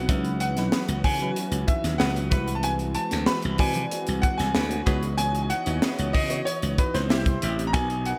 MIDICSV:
0, 0, Header, 1, 7, 480
1, 0, Start_track
1, 0, Tempo, 638298
1, 66, Time_signature, 4, 2, 24, 8
1, 6156, End_track
2, 0, Start_track
2, 0, Title_t, "Grand piano"
2, 0, Program_c, 0, 0
2, 0, Note_on_c, 0, 78, 99
2, 278, Note_off_c, 0, 78, 0
2, 306, Note_on_c, 0, 78, 90
2, 756, Note_off_c, 0, 78, 0
2, 785, Note_on_c, 0, 80, 92
2, 1259, Note_on_c, 0, 76, 82
2, 1280, Note_off_c, 0, 80, 0
2, 1490, Note_on_c, 0, 78, 92
2, 1510, Note_off_c, 0, 76, 0
2, 1833, Note_off_c, 0, 78, 0
2, 1919, Note_on_c, 0, 81, 77
2, 1979, Note_off_c, 0, 81, 0
2, 1983, Note_on_c, 0, 80, 111
2, 2038, Note_off_c, 0, 80, 0
2, 2217, Note_on_c, 0, 81, 102
2, 2455, Note_on_c, 0, 83, 108
2, 2469, Note_off_c, 0, 81, 0
2, 2704, Note_on_c, 0, 80, 105
2, 2708, Note_off_c, 0, 83, 0
2, 3171, Note_on_c, 0, 78, 94
2, 3200, Note_off_c, 0, 80, 0
2, 3291, Note_on_c, 0, 80, 89
2, 3302, Note_off_c, 0, 78, 0
2, 3633, Note_off_c, 0, 80, 0
2, 3892, Note_on_c, 0, 80, 113
2, 4070, Note_off_c, 0, 80, 0
2, 4081, Note_on_c, 0, 80, 73
2, 4134, Note_on_c, 0, 78, 107
2, 4140, Note_off_c, 0, 80, 0
2, 4590, Note_off_c, 0, 78, 0
2, 4611, Note_on_c, 0, 75, 90
2, 4841, Note_off_c, 0, 75, 0
2, 4852, Note_on_c, 0, 73, 88
2, 5104, Note_on_c, 0, 71, 84
2, 5106, Note_off_c, 0, 73, 0
2, 5220, Note_on_c, 0, 72, 78
2, 5229, Note_off_c, 0, 71, 0
2, 5557, Note_off_c, 0, 72, 0
2, 5769, Note_on_c, 0, 82, 85
2, 5815, Note_on_c, 0, 80, 118
2, 5823, Note_off_c, 0, 82, 0
2, 6062, Note_on_c, 0, 78, 94
2, 6068, Note_off_c, 0, 80, 0
2, 6156, Note_off_c, 0, 78, 0
2, 6156, End_track
3, 0, Start_track
3, 0, Title_t, "Horn section"
3, 0, Program_c, 1, 61
3, 540, Note_on_c, 1, 66, 85
3, 540, Note_on_c, 1, 68, 82
3, 543, Note_on_c, 1, 71, 88
3, 645, Note_off_c, 1, 66, 0
3, 645, Note_off_c, 1, 68, 0
3, 646, Note_off_c, 1, 71, 0
3, 1490, Note_on_c, 1, 68, 91
3, 1493, Note_on_c, 1, 71, 108
3, 1494, Note_on_c, 1, 66, 90
3, 1572, Note_off_c, 1, 68, 0
3, 1574, Note_off_c, 1, 66, 0
3, 1574, Note_off_c, 1, 71, 0
3, 1726, Note_on_c, 1, 71, 101
3, 1727, Note_on_c, 1, 66, 90
3, 1732, Note_on_c, 1, 64, 88
3, 1886, Note_off_c, 1, 66, 0
3, 1886, Note_off_c, 1, 71, 0
3, 1889, Note_off_c, 1, 64, 0
3, 2452, Note_on_c, 1, 66, 82
3, 2454, Note_on_c, 1, 64, 83
3, 2456, Note_on_c, 1, 71, 91
3, 2560, Note_off_c, 1, 66, 0
3, 2561, Note_off_c, 1, 64, 0
3, 2562, Note_off_c, 1, 71, 0
3, 3422, Note_on_c, 1, 66, 92
3, 3424, Note_on_c, 1, 71, 104
3, 3428, Note_on_c, 1, 64, 89
3, 3500, Note_off_c, 1, 66, 0
3, 3501, Note_off_c, 1, 71, 0
3, 3504, Note_off_c, 1, 64, 0
3, 3650, Note_on_c, 1, 71, 107
3, 3652, Note_on_c, 1, 66, 91
3, 3652, Note_on_c, 1, 68, 97
3, 3808, Note_off_c, 1, 71, 0
3, 3809, Note_off_c, 1, 66, 0
3, 3810, Note_off_c, 1, 68, 0
3, 4376, Note_on_c, 1, 66, 84
3, 4377, Note_on_c, 1, 68, 84
3, 4379, Note_on_c, 1, 71, 90
3, 4482, Note_off_c, 1, 66, 0
3, 4483, Note_off_c, 1, 68, 0
3, 4484, Note_off_c, 1, 71, 0
3, 5334, Note_on_c, 1, 60, 91
3, 5336, Note_on_c, 1, 67, 105
3, 5337, Note_on_c, 1, 64, 94
3, 5414, Note_off_c, 1, 60, 0
3, 5416, Note_off_c, 1, 64, 0
3, 5416, Note_off_c, 1, 67, 0
3, 5580, Note_on_c, 1, 67, 102
3, 5581, Note_on_c, 1, 64, 92
3, 5582, Note_on_c, 1, 60, 100
3, 5734, Note_off_c, 1, 67, 0
3, 5735, Note_off_c, 1, 64, 0
3, 5736, Note_off_c, 1, 60, 0
3, 6156, End_track
4, 0, Start_track
4, 0, Title_t, "FM electric piano"
4, 0, Program_c, 2, 5
4, 0, Control_c, 2, 64, 127
4, 0, Note_on_c, 2, 56, 90
4, 0, Note_on_c, 2, 60, 89
4, 0, Note_on_c, 2, 64, 81
4, 0, Note_on_c, 2, 66, 83
4, 0, Note_on_c, 2, 71, 98
4, 60, Note_on_c, 2, 61, 71
4, 62, Note_on_c, 2, 54, 76
4, 66, Note_on_c, 2, 63, 71
4, 68, Note_off_c, 2, 64, 0
4, 68, Note_on_c, 2, 64, 70
4, 69, Note_off_c, 2, 71, 0
4, 69, Note_on_c, 2, 71, 81
4, 74, Control_c, 2, 64, 0
4, 79, Note_off_c, 2, 56, 0
4, 79, Note_off_c, 2, 60, 0
4, 80, Note_off_c, 2, 66, 0
4, 190, Control_c, 2, 64, 127
4, 382, Note_off_c, 2, 61, 0
4, 383, Note_off_c, 2, 54, 0
4, 385, Note_off_c, 2, 63, 0
4, 386, Note_off_c, 2, 64, 0
4, 387, Note_off_c, 2, 71, 0
4, 427, Note_on_c, 2, 54, 74
4, 430, Note_on_c, 2, 61, 66
4, 431, Note_on_c, 2, 63, 73
4, 433, Note_on_c, 2, 64, 67
4, 438, Note_on_c, 2, 71, 86
4, 852, Note_off_c, 2, 54, 0
4, 853, Note_off_c, 2, 61, 0
4, 854, Note_off_c, 2, 63, 0
4, 855, Note_off_c, 2, 64, 0
4, 858, Note_off_c, 2, 71, 0
4, 911, Note_on_c, 2, 54, 72
4, 911, Note_on_c, 2, 61, 65
4, 915, Note_on_c, 2, 66, 63
4, 919, Note_on_c, 2, 64, 67
4, 919, Note_on_c, 2, 71, 81
4, 1734, Note_off_c, 2, 64, 0
4, 1738, Note_off_c, 2, 66, 0
4, 1739, Note_off_c, 2, 71, 0
4, 1739, Note_on_c, 2, 60, 73
4, 1740, Note_on_c, 2, 56, 80
4, 1743, Note_on_c, 2, 64, 71
4, 1747, Note_on_c, 2, 66, 70
4, 1748, Note_on_c, 2, 71, 88
4, 1749, Note_off_c, 2, 54, 0
4, 1749, Note_off_c, 2, 61, 0
4, 1758, Control_c, 2, 64, 0
4, 1883, Control_c, 2, 64, 127
4, 2381, Note_off_c, 2, 56, 0
4, 2381, Note_off_c, 2, 60, 0
4, 2383, Note_off_c, 2, 64, 0
4, 2385, Note_off_c, 2, 66, 0
4, 2385, Note_off_c, 2, 71, 0
4, 2452, Note_on_c, 2, 56, 74
4, 2454, Note_on_c, 2, 60, 69
4, 2457, Note_on_c, 2, 64, 71
4, 2458, Note_on_c, 2, 66, 72
4, 2461, Note_on_c, 2, 71, 80
4, 2672, Note_off_c, 2, 56, 0
4, 2673, Note_off_c, 2, 60, 0
4, 2674, Note_off_c, 2, 64, 0
4, 2675, Note_off_c, 2, 66, 0
4, 2676, Note_off_c, 2, 71, 0
4, 2693, Note_on_c, 2, 56, 73
4, 2694, Note_on_c, 2, 60, 65
4, 2698, Note_on_c, 2, 64, 65
4, 2702, Note_on_c, 2, 66, 66
4, 2703, Note_on_c, 2, 74, 82
4, 3550, Note_off_c, 2, 56, 0
4, 3550, Note_off_c, 2, 60, 0
4, 3553, Note_off_c, 2, 64, 0
4, 3554, Note_off_c, 2, 66, 0
4, 3555, Note_off_c, 2, 74, 0
4, 3654, Note_on_c, 2, 59, 78
4, 3656, Note_on_c, 2, 63, 73
4, 3660, Note_on_c, 2, 64, 72
4, 3662, Note_on_c, 2, 66, 75
4, 3664, Note_on_c, 2, 73, 84
4, 3675, Control_c, 2, 64, 0
4, 3783, Control_c, 2, 64, 127
4, 4191, Note_off_c, 2, 59, 0
4, 4192, Note_off_c, 2, 63, 0
4, 4195, Note_off_c, 2, 64, 0
4, 4196, Note_off_c, 2, 66, 0
4, 4196, Note_off_c, 2, 73, 0
4, 4255, Note_on_c, 2, 59, 77
4, 4256, Note_on_c, 2, 63, 70
4, 4258, Note_on_c, 2, 64, 75
4, 4262, Note_on_c, 2, 66, 69
4, 4262, Note_on_c, 2, 73, 85
4, 4685, Note_off_c, 2, 59, 0
4, 4686, Note_off_c, 2, 63, 0
4, 4687, Note_off_c, 2, 64, 0
4, 4689, Note_off_c, 2, 66, 0
4, 4689, Note_off_c, 2, 73, 0
4, 4735, Note_on_c, 2, 59, 76
4, 4735, Note_on_c, 2, 63, 70
4, 4740, Note_on_c, 2, 64, 69
4, 4742, Note_on_c, 2, 66, 69
4, 4743, Note_on_c, 2, 73, 85
4, 5330, Note_off_c, 2, 64, 0
4, 5336, Note_on_c, 2, 60, 82
4, 5339, Note_on_c, 2, 64, 75
4, 5339, Note_on_c, 2, 67, 74
4, 5340, Note_off_c, 2, 59, 0
4, 5340, Note_off_c, 2, 63, 0
4, 5341, Note_on_c, 2, 72, 73
4, 5343, Note_off_c, 2, 66, 0
4, 5344, Note_off_c, 2, 73, 0
4, 5345, Note_on_c, 2, 76, 86
4, 5356, Control_c, 2, 64, 0
4, 5509, Control_c, 2, 64, 127
4, 5766, Note_off_c, 2, 60, 0
4, 5767, Note_off_c, 2, 64, 0
4, 5768, Note_off_c, 2, 67, 0
4, 5768, Note_off_c, 2, 72, 0
4, 5770, Note_off_c, 2, 76, 0
4, 5815, Note_on_c, 2, 59, 81
4, 5820, Note_on_c, 2, 63, 68
4, 5820, Note_on_c, 2, 66, 69
4, 5823, Note_on_c, 2, 70, 71
4, 5823, Note_on_c, 2, 75, 83
4, 5835, Control_c, 2, 64, 0
4, 5955, Control_c, 2, 64, 127
4, 6156, Note_off_c, 2, 59, 0
4, 6156, Note_off_c, 2, 63, 0
4, 6156, Note_off_c, 2, 66, 0
4, 6156, Note_off_c, 2, 70, 0
4, 6156, Note_off_c, 2, 75, 0
4, 6156, End_track
5, 0, Start_track
5, 0, Title_t, "String section"
5, 0, Program_c, 3, 48
5, 0, Note_on_c, 3, 52, 73
5, 70, Note_on_c, 3, 59, 67
5, 71, Note_on_c, 3, 61, 69
5, 74, Note_on_c, 3, 66, 85
5, 1731, Note_off_c, 3, 59, 0
5, 1732, Note_off_c, 3, 61, 0
5, 1734, Note_off_c, 3, 66, 0
5, 1753, Note_on_c, 3, 66, 79
5, 1756, Note_on_c, 3, 60, 69
5, 3651, Note_off_c, 3, 60, 0
5, 3674, Note_on_c, 3, 59, 68
5, 3678, Note_on_c, 3, 75, 66
5, 5316, Note_off_c, 3, 52, 0
5, 5319, Note_off_c, 3, 66, 0
5, 5333, Note_off_c, 3, 59, 0
5, 5335, Note_off_c, 3, 75, 0
5, 5340, Note_on_c, 3, 64, 78
5, 5343, Note_on_c, 3, 60, 63
5, 5344, Note_on_c, 3, 48, 72
5, 5818, Note_off_c, 3, 64, 0
5, 5819, Note_off_c, 3, 60, 0
5, 5820, Note_off_c, 3, 48, 0
5, 5831, Note_on_c, 3, 59, 77
5, 5837, Note_on_c, 3, 54, 73
5, 5839, Note_on_c, 3, 63, 87
5, 6156, Note_off_c, 3, 54, 0
5, 6156, Note_off_c, 3, 59, 0
5, 6156, Note_off_c, 3, 63, 0
5, 6156, End_track
6, 0, Start_track
6, 0, Title_t, "Slap bass"
6, 0, Program_c, 4, 36
6, 69, Note_on_c, 4, 37, 110
6, 417, Note_off_c, 4, 37, 0
6, 417, Note_on_c, 4, 35, 86
6, 516, Note_off_c, 4, 35, 0
6, 666, Note_on_c, 4, 37, 98
6, 762, Note_off_c, 4, 37, 0
6, 787, Note_on_c, 4, 49, 90
6, 979, Note_off_c, 4, 49, 0
6, 1139, Note_on_c, 4, 37, 92
6, 1238, Note_off_c, 4, 37, 0
6, 1383, Note_on_c, 4, 39, 90
6, 1480, Note_off_c, 4, 39, 0
6, 1509, Note_on_c, 4, 37, 91
6, 1742, Note_off_c, 4, 37, 0
6, 1742, Note_on_c, 4, 36, 96
6, 2222, Note_off_c, 4, 36, 0
6, 2351, Note_on_c, 4, 38, 93
6, 2445, Note_off_c, 4, 38, 0
6, 2593, Note_on_c, 4, 36, 95
6, 2686, Note_off_c, 4, 36, 0
6, 2699, Note_on_c, 4, 48, 96
6, 2893, Note_off_c, 4, 48, 0
6, 3070, Note_on_c, 4, 36, 94
6, 3164, Note_off_c, 4, 36, 0
6, 3305, Note_on_c, 4, 36, 92
6, 3401, Note_off_c, 4, 36, 0
6, 3423, Note_on_c, 4, 38, 96
6, 3616, Note_off_c, 4, 38, 0
6, 3663, Note_on_c, 4, 37, 95
6, 4143, Note_off_c, 4, 37, 0
6, 4262, Note_on_c, 4, 39, 88
6, 4359, Note_off_c, 4, 39, 0
6, 4505, Note_on_c, 4, 37, 93
6, 4601, Note_off_c, 4, 37, 0
6, 4621, Note_on_c, 4, 49, 97
6, 4814, Note_off_c, 4, 49, 0
6, 4984, Note_on_c, 4, 37, 97
6, 5080, Note_off_c, 4, 37, 0
6, 5221, Note_on_c, 4, 37, 86
6, 5345, Note_off_c, 4, 37, 0
6, 5345, Note_on_c, 4, 36, 103
6, 5537, Note_off_c, 4, 36, 0
6, 5587, Note_on_c, 4, 33, 86
6, 5820, Note_off_c, 4, 33, 0
6, 5820, Note_on_c, 4, 35, 111
6, 6109, Note_off_c, 4, 35, 0
6, 6156, End_track
7, 0, Start_track
7, 0, Title_t, "Drums"
7, 66, Note_on_c, 9, 42, 90
7, 67, Note_on_c, 9, 36, 122
7, 69, Note_on_c, 9, 62, 53
7, 141, Note_off_c, 9, 42, 0
7, 142, Note_off_c, 9, 36, 0
7, 144, Note_off_c, 9, 62, 0
7, 184, Note_on_c, 9, 42, 43
7, 260, Note_off_c, 9, 42, 0
7, 303, Note_on_c, 9, 42, 74
7, 378, Note_off_c, 9, 42, 0
7, 426, Note_on_c, 9, 38, 36
7, 426, Note_on_c, 9, 42, 51
7, 501, Note_off_c, 9, 38, 0
7, 501, Note_off_c, 9, 42, 0
7, 543, Note_on_c, 9, 38, 121
7, 548, Note_on_c, 9, 63, 69
7, 618, Note_off_c, 9, 38, 0
7, 623, Note_off_c, 9, 63, 0
7, 665, Note_on_c, 9, 42, 56
7, 741, Note_off_c, 9, 42, 0
7, 783, Note_on_c, 9, 46, 89
7, 784, Note_on_c, 9, 36, 90
7, 785, Note_on_c, 9, 62, 48
7, 858, Note_off_c, 9, 46, 0
7, 859, Note_off_c, 9, 36, 0
7, 860, Note_off_c, 9, 62, 0
7, 898, Note_on_c, 9, 42, 55
7, 973, Note_off_c, 9, 42, 0
7, 1025, Note_on_c, 9, 42, 86
7, 1100, Note_off_c, 9, 42, 0
7, 1140, Note_on_c, 9, 42, 57
7, 1216, Note_off_c, 9, 42, 0
7, 1262, Note_on_c, 9, 42, 82
7, 1265, Note_on_c, 9, 36, 90
7, 1269, Note_on_c, 9, 62, 49
7, 1337, Note_off_c, 9, 42, 0
7, 1340, Note_off_c, 9, 36, 0
7, 1344, Note_off_c, 9, 62, 0
7, 1385, Note_on_c, 9, 38, 39
7, 1385, Note_on_c, 9, 42, 53
7, 1460, Note_off_c, 9, 38, 0
7, 1460, Note_off_c, 9, 42, 0
7, 1502, Note_on_c, 9, 38, 114
7, 1504, Note_on_c, 9, 63, 67
7, 1577, Note_off_c, 9, 38, 0
7, 1580, Note_off_c, 9, 63, 0
7, 1627, Note_on_c, 9, 42, 57
7, 1633, Note_on_c, 9, 63, 71
7, 1702, Note_off_c, 9, 42, 0
7, 1708, Note_off_c, 9, 63, 0
7, 1740, Note_on_c, 9, 42, 83
7, 1743, Note_on_c, 9, 36, 103
7, 1816, Note_off_c, 9, 42, 0
7, 1819, Note_off_c, 9, 36, 0
7, 1862, Note_on_c, 9, 42, 50
7, 1937, Note_off_c, 9, 42, 0
7, 1977, Note_on_c, 9, 42, 86
7, 1994, Note_on_c, 9, 62, 53
7, 2053, Note_off_c, 9, 42, 0
7, 2069, Note_off_c, 9, 62, 0
7, 2099, Note_on_c, 9, 42, 43
7, 2174, Note_off_c, 9, 42, 0
7, 2215, Note_on_c, 9, 42, 72
7, 2290, Note_off_c, 9, 42, 0
7, 2339, Note_on_c, 9, 38, 37
7, 2340, Note_on_c, 9, 42, 55
7, 2415, Note_off_c, 9, 38, 0
7, 2415, Note_off_c, 9, 42, 0
7, 2455, Note_on_c, 9, 38, 125
7, 2471, Note_on_c, 9, 63, 70
7, 2530, Note_off_c, 9, 38, 0
7, 2547, Note_off_c, 9, 63, 0
7, 2575, Note_on_c, 9, 42, 57
7, 2650, Note_off_c, 9, 42, 0
7, 2693, Note_on_c, 9, 46, 90
7, 2701, Note_on_c, 9, 36, 91
7, 2706, Note_on_c, 9, 62, 48
7, 2768, Note_off_c, 9, 46, 0
7, 2776, Note_off_c, 9, 36, 0
7, 2782, Note_off_c, 9, 62, 0
7, 2812, Note_on_c, 9, 42, 58
7, 2829, Note_on_c, 9, 64, 80
7, 2887, Note_off_c, 9, 42, 0
7, 2904, Note_off_c, 9, 64, 0
7, 2944, Note_on_c, 9, 42, 85
7, 2954, Note_on_c, 9, 62, 34
7, 3019, Note_off_c, 9, 42, 0
7, 3029, Note_off_c, 9, 62, 0
7, 3058, Note_on_c, 9, 42, 57
7, 3133, Note_off_c, 9, 42, 0
7, 3183, Note_on_c, 9, 42, 82
7, 3184, Note_on_c, 9, 36, 89
7, 3193, Note_on_c, 9, 62, 48
7, 3258, Note_off_c, 9, 42, 0
7, 3259, Note_off_c, 9, 36, 0
7, 3268, Note_off_c, 9, 62, 0
7, 3304, Note_on_c, 9, 38, 40
7, 3304, Note_on_c, 9, 42, 51
7, 3379, Note_off_c, 9, 42, 0
7, 3380, Note_off_c, 9, 38, 0
7, 3419, Note_on_c, 9, 38, 114
7, 3422, Note_on_c, 9, 63, 67
7, 3494, Note_off_c, 9, 38, 0
7, 3497, Note_off_c, 9, 63, 0
7, 3540, Note_on_c, 9, 42, 55
7, 3548, Note_on_c, 9, 63, 71
7, 3615, Note_off_c, 9, 42, 0
7, 3623, Note_off_c, 9, 63, 0
7, 3658, Note_on_c, 9, 42, 80
7, 3661, Note_on_c, 9, 36, 109
7, 3733, Note_off_c, 9, 42, 0
7, 3736, Note_off_c, 9, 36, 0
7, 3780, Note_on_c, 9, 42, 50
7, 3855, Note_off_c, 9, 42, 0
7, 3896, Note_on_c, 9, 42, 94
7, 3905, Note_on_c, 9, 62, 58
7, 3971, Note_off_c, 9, 42, 0
7, 3980, Note_off_c, 9, 62, 0
7, 4020, Note_on_c, 9, 42, 44
7, 4095, Note_off_c, 9, 42, 0
7, 4136, Note_on_c, 9, 42, 77
7, 4211, Note_off_c, 9, 42, 0
7, 4257, Note_on_c, 9, 42, 55
7, 4332, Note_off_c, 9, 42, 0
7, 4378, Note_on_c, 9, 38, 118
7, 4381, Note_on_c, 9, 63, 68
7, 4453, Note_off_c, 9, 38, 0
7, 4456, Note_off_c, 9, 63, 0
7, 4501, Note_on_c, 9, 42, 56
7, 4576, Note_off_c, 9, 42, 0
7, 4616, Note_on_c, 9, 62, 46
7, 4621, Note_on_c, 9, 36, 92
7, 4621, Note_on_c, 9, 46, 90
7, 4691, Note_off_c, 9, 62, 0
7, 4696, Note_off_c, 9, 46, 0
7, 4697, Note_off_c, 9, 36, 0
7, 4738, Note_on_c, 9, 42, 56
7, 4813, Note_off_c, 9, 42, 0
7, 4863, Note_on_c, 9, 42, 82
7, 4938, Note_off_c, 9, 42, 0
7, 4981, Note_on_c, 9, 42, 57
7, 5056, Note_off_c, 9, 42, 0
7, 5100, Note_on_c, 9, 62, 46
7, 5102, Note_on_c, 9, 36, 95
7, 5102, Note_on_c, 9, 42, 76
7, 5175, Note_off_c, 9, 62, 0
7, 5177, Note_off_c, 9, 36, 0
7, 5177, Note_off_c, 9, 42, 0
7, 5223, Note_on_c, 9, 38, 38
7, 5223, Note_on_c, 9, 42, 51
7, 5298, Note_off_c, 9, 42, 0
7, 5299, Note_off_c, 9, 38, 0
7, 5334, Note_on_c, 9, 63, 67
7, 5342, Note_on_c, 9, 38, 108
7, 5409, Note_off_c, 9, 63, 0
7, 5417, Note_off_c, 9, 38, 0
7, 5457, Note_on_c, 9, 63, 69
7, 5460, Note_on_c, 9, 36, 100
7, 5460, Note_on_c, 9, 42, 53
7, 5532, Note_off_c, 9, 63, 0
7, 5535, Note_off_c, 9, 36, 0
7, 5536, Note_off_c, 9, 42, 0
7, 5581, Note_on_c, 9, 42, 81
7, 5656, Note_off_c, 9, 42, 0
7, 5708, Note_on_c, 9, 42, 54
7, 5783, Note_off_c, 9, 42, 0
7, 5819, Note_on_c, 9, 62, 56
7, 5821, Note_on_c, 9, 36, 127
7, 5821, Note_on_c, 9, 42, 95
7, 5895, Note_off_c, 9, 62, 0
7, 5896, Note_off_c, 9, 36, 0
7, 5896, Note_off_c, 9, 42, 0
7, 5940, Note_on_c, 9, 42, 43
7, 6015, Note_off_c, 9, 42, 0
7, 6058, Note_on_c, 9, 42, 77
7, 6133, Note_off_c, 9, 42, 0
7, 6156, End_track
0, 0, End_of_file